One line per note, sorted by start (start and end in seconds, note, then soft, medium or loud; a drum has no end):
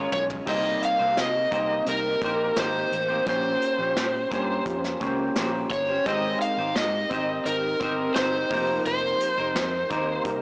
0.00 0.47 G#3 medium
0.00 0.47 C#4 medium
0.00 0.47 F4 medium
0.00 0.47 A#4 medium
0.12 0.40 B1 medium
0.12 0.23 C#5 medium
0.12 mid tom medium
0.30 floor tom medium
0.45 0.75 C2 loud
0.45 0.99 C3 medium
0.45 0.99 G3 medium
0.45 1.00 A#3 medium
0.45 1.57 C4 medium
0.45 1.57 D#4 medium
0.45 1.00 D#4 medium
0.45 1.57 G4 medium
0.45 0.99 G4 medium
0.45 1.58 A#4 medium
0.45 0.98 C5 medium
0.45 0.84 D#5 medium
0.45 kick loud
0.45 crash medium
0.82 1.20 F5 medium
0.82 closed hi-hat medium
0.99 1.14 C2 medium
0.99 1.50 A#3 soft
0.99 1.51 D#4 soft
0.99 1.52 G4 soft
0.99 1.52 C5 soft
1.17 1.45 C3 loud
1.17 1.90 D#5 medium
1.17 snare medium
1.17 closed hi-hat medium
1.51 1.80 C2 medium
1.51 2.22 A#3 medium
1.51 2.22 D#4 medium
1.51 2.23 G4 medium
1.51 2.24 C5 medium
1.51 kick medium
1.51 closed hi-hat medium
1.85 2.15 C2 medium
1.85 2.96 C4 medium
1.85 2.96 D#4 medium
1.85 2.97 G4 medium
1.85 2.97 A#4 medium
1.85 2.60 A#4 medium
1.85 closed hi-hat medium
2.22 2.50 A#1 medium
2.22 2.56 A#3 medium
2.22 2.57 D#4 medium
2.22 2.57 G4 medium
2.22 2.58 C5 medium
2.22 kick medium
2.22 closed hi-hat medium
2.56 2.85 G#1 medium
2.56 3.09 A#3 medium
2.56 3.09 D#4 medium
2.56 3.09 G4 medium
2.56 3.07 C5 medium
2.56 3.28 C5 medium
2.56 snare loud
2.56 closed hi-hat medium
2.92 3.20 A1 medium
2.92 closed hi-hat medium
3.08 3.26 A#3 soft
3.08 3.28 D#4 soft
3.08 3.27 G4 soft
3.08 3.26 C5 soft
3.25 3.55 A#1 loud
3.25 3.79 A#3 medium
3.25 4.36 C#4 medium
3.25 3.80 C#4 medium
3.25 4.36 F4 medium
3.25 4.37 G4 medium
3.25 3.79 G4 medium
3.25 4.37 C5 medium
3.25 3.77 C5 medium
3.25 4.64 C5 medium
3.25 kick loud
3.25 closed hi-hat medium
3.61 closed hi-hat medium
3.79 3.93 A#1 medium
3.79 4.31 C#4 soft
3.79 4.32 G4 soft
3.79 4.31 C5 soft
3.97 4.25 A#2 medium
3.97 snare loud
3.97 closed hi-hat medium
4.31 4.60 G2 medium
4.31 4.99 A#3 medium
4.31 5.00 C#4 medium
4.31 5.02 G4 medium
4.31 5.03 C5 medium
4.31 kick medium
4.31 closed hi-hat medium
4.65 4.94 F2 medium
4.65 5.76 C#4 medium
4.65 5.76 F4 medium
4.65 5.77 G4 medium
4.65 5.77 C5 medium
4.65 kick medium
4.65 closed hi-hat medium
4.84 snare soft
5.00 5.29 C#2 medium
5.00 5.34 A#3 medium
5.00 5.35 C#4 medium
5.00 5.36 G4 medium
5.00 5.37 C5 medium
5.00 kick loud
5.00 closed hi-hat medium
5.35 5.64 A#1 medium
5.35 5.88 A#3 medium
5.35 5.89 C#4 medium
5.35 5.89 G4 medium
5.35 5.87 C5 medium
5.35 snare loud
5.35 closed hi-hat medium
5.70 5.99 G1 medium
5.70 6.07 C#5 medium
5.70 kick medium
5.70 closed hi-hat medium
5.89 6.06 C#4 soft
5.89 6.06 G4 soft
5.89 6.06 C5 soft
6.04 6.34 G#1 loud
6.04 6.59 G#3 medium
6.04 7.15 C4 medium
6.04 6.59 C4 medium
6.04 7.16 D#4 medium
6.04 6.59 D#4 medium
6.04 7.16 G4 medium
6.04 6.59 G4 medium
6.04 7.17 A#4 medium
6.04 6.57 C5 medium
6.04 6.41 D#5 loud
6.04 kick loud
6.04 closed hi-hat medium
6.41 6.77 F5 loud
6.41 closed hi-hat medium
6.58 6.72 G#1 medium
6.58 7.10 D#4 soft
6.58 7.11 G4 soft
6.58 7.11 C5 soft
6.76 7.04 G#2 loud
6.76 7.48 D#5 medium
6.76 snare loud
6.76 closed hi-hat medium
7.10 7.39 G#1 medium
7.10 7.79 C4 medium
7.10 7.81 D#4 medium
7.10 7.81 G4 medium
7.10 7.82 C5 medium
7.10 kick medium
7.10 closed hi-hat medium
7.45 7.74 G#1 medium
7.45 8.48 C4 medium
7.45 8.49 D#4 medium
7.45 8.50 G4 medium
7.45 8.12 A#4 medium
7.45 8.50 A#4 medium
7.45 closed hi-hat medium
7.80 8.09 G1 medium
7.80 8.14 C4 medium
7.80 8.16 D#4 medium
7.80 8.16 G4 medium
7.80 8.17 C5 medium
7.80 kick loud
7.80 closed hi-hat medium
8.15 8.44 G1 medium
8.15 8.51 C4 medium
8.15 8.51 D#4 medium
8.15 8.51 G4 medium
8.15 8.81 C5 medium
8.15 8.52 C5 medium
8.15 snare loud
8.15 closed hi-hat medium
8.49 8.78 F1 medium
8.49 9.38 F3 medium
8.49 9.41 A#3 medium
8.49 9.62 C4 medium
8.49 9.62 D#4 medium
8.49 9.40 D#4 medium
8.49 9.62 G4 medium
8.49 9.63 A#4 medium
8.49 9.39 A#4 medium
8.49 9.37 C5 medium
8.49 kick medium
8.49 open hi-hat medium
8.85 9.13 F1 loud
8.85 10.22 C5 medium
8.85 closed hi-hat medium
9.20 closed hi-hat medium
9.38 9.52 F1 medium
9.38 9.90 D#4 soft
9.38 9.90 A#4 soft
9.38 9.90 C5 medium
9.55 9.83 F2 loud
9.55 snare loud
9.55 closed hi-hat medium
9.90 10.18 D#2 medium
9.90 10.42 A#3 medium
9.90 10.42 D#4 medium
9.90 10.42 A#4 medium
9.90 10.42 C5 medium
9.90 kick medium
9.90 closed hi-hat medium
10.23 10.42 C2 medium
10.23 10.42 C4 medium
10.23 10.42 D#4 medium
10.23 10.42 G4 medium
10.23 10.42 A#4 medium
10.23 kick medium
10.23 closed hi-hat medium